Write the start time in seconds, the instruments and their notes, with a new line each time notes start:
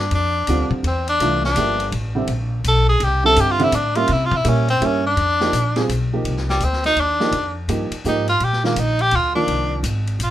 Already playing: upright bass G2, tenor saxophone D4
0.11 upright bass F2, tenor saxophone D4, ride
0.47 upright bass D2, grand piano D3 G3 C4 F4, hi-hat pedal, ride
0.70 muted upright bass stroke, kick
0.83 upright bass E2, ride
0.88 tenor saxophone C4
1.07 tenor saxophone D4, ride
1.20 upright bass C2, grand piano E3 A3 D4 F4, hi-hat pedal, ride
1.44 tenor saxophone D4, snare
1.55 upright bass G1, grand piano F3 A#3 E4 G4, hi-hat pedal, ride
1.80 ride
1.92 upright bass A1, ride
2.15 grand piano D3 G3 C4 E4
2.27 upright bass A#1, ride
2.64 upright bass B1, tenor saxophone A4, hi-hat pedal, ride
2.89 tenor saxophone G#4
3.00 upright bass C2, tenor saxophone G4, ride
3.24 grand piano D3 G3 C4 E4, tenor saxophone A4
3.36 upright bass G2, tenor saxophone G4, hi-hat pedal, ride
3.51 tenor saxophone F4
3.59 grand piano D3 G3 C4 E4, ride
3.64 tenor saxophone E4
3.72 upright bass A2, tenor saxophone D4, hi-hat pedal, ride
3.95 grand piano G3 A#3 C#4 E4, tenor saxophone F4, ride
4.08 upright bass C3, ride
4.12 tenor saxophone E4
4.25 tenor saxophone F4
4.32 kick
4.36 tenor saxophone E4
4.44 upright bass A#2, grand piano G3 A#3 C#4 E4, hi-hat pedal, ride
4.49 tenor saxophone C#4
4.68 tenor saxophone C4, ride
4.81 upright bass G2, grand piano G3 A#3 C#4 E4, ride
4.85 tenor saxophone C#4
5.06 tenor saxophone D4
5.16 upright bass F2, ride
5.40 grand piano F3 A#3 D#4 G4, snare
5.52 upright bass A#1, hi-hat pedal, ride
5.76 grand piano G3 C4 F4 G#4, snare, ride
5.89 upright bass B1, hi-hat pedal, ride
6.13 grand piano F3 A#3 D#4 G4
6.24 upright bass C2, ride
6.37 snare
6.49 tenor saxophone G3, snare
6.60 upright bass D2, hi-hat pedal, ride
6.64 tenor saxophone C4
6.73 snare
6.84 tenor saxophone D#4, snare, ride
6.96 upright bass D#2, ride
7.01 tenor saxophone D4
7.20 grand piano F3 A#3 D#4 G4, snare
7.32 upright bass F2, ride
7.68 upright bass G2, grand piano F3 A#3 D#4 G4, hi-hat pedal, ride
7.91 muted upright bass stroke, ride
8.04 upright bass G#2, grand piano F3 A#3 D#4 G4, tenor saxophone D#4, hi-hat pedal
8.28 tenor saxophone F4, ride
8.40 upright bass A#2, ride
8.44 tenor saxophone G4
8.53 snare
8.64 grand piano D#3 G#3 D4 F4, tenor saxophone A#3, snare
8.76 upright bass A#1, tenor saxophone D#4, hi-hat pedal, ride
8.99 tenor saxophone G4, ride
9.11 upright bass D2, ride
9.16 tenor saxophone F4
9.35 grand piano D#3 F3 A#3 F4, tenor saxophone D4
9.47 upright bass C2, ride
9.83 upright bass G#1, hi-hat pedal, ride
10.07 ride
10.19 upright bass A#1, hi-hat pedal, ride
10.23 tenor saxophone F4